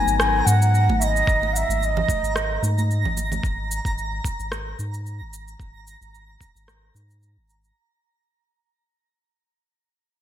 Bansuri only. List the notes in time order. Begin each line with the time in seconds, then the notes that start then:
Already playing: G#5
0.19 G#5
0.46 F#5
1.00 D#5 E5
1.54 E5 F#5
1.80 E5
1.85 D#5